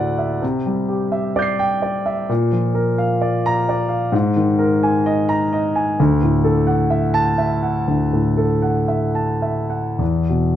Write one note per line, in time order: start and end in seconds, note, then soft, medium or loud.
0.00 0.37 D2 medium
0.00 0.44 A2 soft
0.00 0.44 F#4 soft
0.00 0.45 D5 soft
0.00 0.19 E5 soft
0.00 0.44 F#5 medium
0.00 0.37 D6 soft
0.00 0.39 F#6 soft
0.00 0.40 A6 soft
0.19 0.42 E5 soft
0.42 2.25 C3 medium
0.66 1.03 G3 soft
0.88 1.26 G4 soft
1.12 1.50 E5 soft
1.36 1.74 D5 medium
1.36 2.26 D6 soft
1.36 2.27 G6 soft
1.42 2.29 C7 soft
1.59 1.97 G5 medium
1.82 2.20 D5 soft
2.06 2.29 E5 soft
2.29 4.09 A#2 medium
2.52 2.89 F3 soft
2.75 3.12 A#4 soft
2.98 3.35 F5 medium
3.22 3.59 D5 soft
3.46 3.82 A#5 medium
3.69 4.05 D5 medium
3.89 4.12 F5 medium
4.12 5.94 G#2 medium
4.36 4.73 D#3 soft
4.59 4.96 A#4 medium
4.83 5.20 G#5 medium
5.06 5.43 D#5 medium
5.29 5.66 A#5 medium
5.53 5.90 D#5 medium
5.76 5.99 G#5 medium
5.99 7.84 D2 medium
6.22 6.59 A2 soft
6.44 6.82 A4 medium
6.67 7.05 F#5 medium
6.90 7.29 E5 soft
7.14 7.53 A5 medium
7.38 7.78 E5 medium
7.63 8.02 F#5 soft
7.88 9.96 D2 soft
8.13 8.53 A2 soft
8.37 8.79 A4 soft
8.62 9.05 F#5 soft
8.88 9.32 E5 soft
9.15 9.60 A5 soft
9.42 9.88 E5 soft
9.70 9.99 F#5 soft
9.99 10.56 E2 soft
10.29 10.56 B2 soft